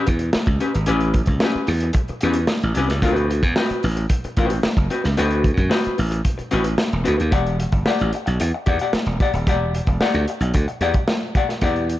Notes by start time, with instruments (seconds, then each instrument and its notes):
0.07 slap bass E2, muted hollow-body jazz guitar stroke, kick, closed hi-hat
0.19 muted hollow-body jazz guitar stroke, closed hi-hat
0.33 muted hollow-body jazz guitar stroke, muted slap bass stroke, snare
0.46 slap bass C#2, kick, closed hi-hat
0.60 hollow-body jazz guitar C#4 G4 B4, closed hi-hat
0.74 slap bass G#1, muted hollow-body jazz guitar stroke, closed hi-hat
0.86 slap bass A1, hollow-body jazz guitar C#4 G4 B4, closed hi-hat
1.00 closed hi-hat
1.14 kick, closed hi-hat
1.26 slap bass C#2, muted hollow-body jazz guitar stroke, kick, closed hi-hat
1.40 hollow-body jazz guitar C#4 G4 B4, snare
1.55 muted slap bass stroke
1.67 slap bass E2, muted hollow-body jazz guitar stroke, open hi-hat
1.80 muted hollow-body jazz guitar stroke, closed hi-hat
1.93 muted hollow-body jazz guitar stroke, kick, closed hi-hat
2.08 muted hollow-body jazz guitar stroke, muted slap bass stroke, closed hi-hat
2.21 slap bass E2, hollow-body jazz guitar C#4 G4 B4, closed hi-hat
2.33 muted hollow-body jazz guitar stroke, closed hi-hat
2.47 muted hollow-body jazz guitar stroke, snare
2.61 slap bass A1, closed hi-hat
2.75 slap bass C2, hollow-body jazz guitar C#4 G4 B4, closed hi-hat
2.89 slap bass C#2, muted hollow-body jazz guitar stroke, snare, closed hi-hat
3.02 slap bass D2, hollow-body jazz guitar C4 F#4 B4, kick, closed hi-hat
3.16 closed hi-hat
3.31 closed hi-hat
3.43 slap bass E2, muted hollow-body jazz guitar stroke, kick, closed hi-hat
3.56 hollow-body jazz guitar C4 F#4 B4, snare
3.69 muted slap bass stroke, closed hi-hat
3.83 slap bass A1, muted hollow-body jazz guitar stroke, open hi-hat
3.96 muted hollow-body jazz guitar stroke, closed hi-hat
4.09 muted hollow-body jazz guitar stroke, kick, closed hi-hat
4.24 muted slap bass stroke, muted hollow-body jazz guitar stroke, closed hi-hat
4.37 slap bass A1, hollow-body jazz guitar C4 F#4 B4, kick, closed hi-hat
4.50 muted hollow-body jazz guitar stroke, closed hi-hat
4.63 muted hollow-body jazz guitar stroke, muted slap bass stroke, snare
4.77 slap bass F#1, kick, closed hi-hat
4.90 hollow-body jazz guitar C4 F#4 B4, closed hi-hat
5.04 slap bass C#2, muted hollow-body jazz guitar stroke, snare, closed hi-hat
5.17 slap bass D2, hollow-body jazz guitar C4 F#4 B4, closed hi-hat
5.30 closed hi-hat
5.44 kick, closed hi-hat
5.57 slap bass F#2, muted hollow-body jazz guitar stroke, kick, closed hi-hat
5.70 hollow-body jazz guitar C4 F#4 B4, snare
5.84 muted slap bass stroke, closed hi-hat
5.98 slap bass A1, muted hollow-body jazz guitar stroke, open hi-hat
6.11 muted hollow-body jazz guitar stroke, closed hi-hat
6.25 muted hollow-body jazz guitar stroke, kick, closed hi-hat
6.38 muted hollow-body jazz guitar stroke, muted slap bass stroke, closed hi-hat
6.51 slap bass A1, hollow-body jazz guitar C4 F#4 B4, closed hi-hat
6.64 muted hollow-body jazz guitar stroke, closed hi-hat
6.78 muted hollow-body jazz guitar stroke, snare
6.93 slap bass E1
7.04 slap bass D2, hollow-body jazz guitar C4 F#4 B4, closed hi-hat
7.18 slap bass D#2, muted hollow-body jazz guitar stroke, closed hi-hat
7.31 slap bass E1, hollow-body jazz guitar G4 D5 F#5, kick, closed hi-hat
7.46 closed hi-hat
7.60 closed hi-hat
7.72 slap bass G1, muted hollow-body jazz guitar stroke, kick, closed hi-hat
7.86 hollow-body jazz guitar G4 D5 F#5, snare
7.99 slap bass A1, closed hi-hat
8.12 muted hollow-body jazz guitar stroke, closed hi-hat
8.26 slap bass B1, muted hollow-body jazz guitar stroke, closed hi-hat
8.40 slap bass E2, muted hollow-body jazz guitar stroke, closed hi-hat
8.54 muted hollow-body jazz guitar stroke
8.66 slap bass E2, hollow-body jazz guitar G4 D5 F#5, kick, closed hi-hat
8.79 hollow-body jazz guitar G4 D5 F#5, closed hi-hat
8.93 muted slap bass stroke, muted hollow-body jazz guitar stroke, snare
9.06 slap bass E1
9.20 hollow-body jazz guitar G4 D5 F#5, kick, closed hi-hat
9.33 slap bass D#1, muted hollow-body jazz guitar stroke, closed hi-hat
9.47 slap bass E1, hollow-body jazz guitar G4 D5 F#5, kick, closed hi-hat
9.74 closed hi-hat
9.87 slap bass E1, muted hollow-body jazz guitar stroke, kick, closed hi-hat
10.01 hollow-body jazz guitar G4 D5 F#5, snare
10.14 slap bass D2, closed hi-hat
10.28 muted hollow-body jazz guitar stroke, closed hi-hat
10.40 slap bass B1, muted hollow-body jazz guitar stroke, closed hi-hat
10.54 slap bass D2, muted hollow-body jazz guitar stroke, kick, closed hi-hat
10.68 muted hollow-body jazz guitar stroke, closed hi-hat
10.81 slap bass E2, hollow-body jazz guitar G4 D5 F#5, closed hi-hat
10.94 muted hollow-body jazz guitar stroke, kick, closed hi-hat
11.08 muted hollow-body jazz guitar stroke, snare
11.35 hollow-body jazz guitar G4 D5 F#5, kick, closed hi-hat
11.49 muted hollow-body jazz guitar stroke, snare, closed hi-hat
11.61 slap bass E2, hollow-body jazz guitar G4 D5 F#5, kick, closed hi-hat
11.76 closed hi-hat
11.89 closed hi-hat